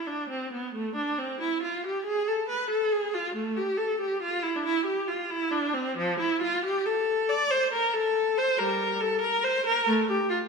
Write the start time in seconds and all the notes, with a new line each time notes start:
0.07 D4
0.29 C4
0.52 B3
0.75 A3
0.95 D4
1.18 C4
1.40 E4
1.62 F4
1.86 G4
2.05 G#4
2.28 A4
2.48 B4
2.70 A4
2.92 G#4
3.14 F4
3.35 A3
3.56 G4
3.78 A4
4.00 G4
4.22 F4
4.43 E4
4.56 D4
4.65 E4
4.85 G4
5.08 F4
5.30 E4
5.51 D4
5.74 C4
5.97 F3
6.19 E4
6.41 F4
6.65 G4
6.85 A4
7.29 D5
7.50 C5
7.72 A#4
7.94 A4
8.37 C5
8.58 G3 A#4
9.01 A4
9.20 A#4
9.44 C5
9.66 A#4
9.86 A3
10.08 G4
10.30 F4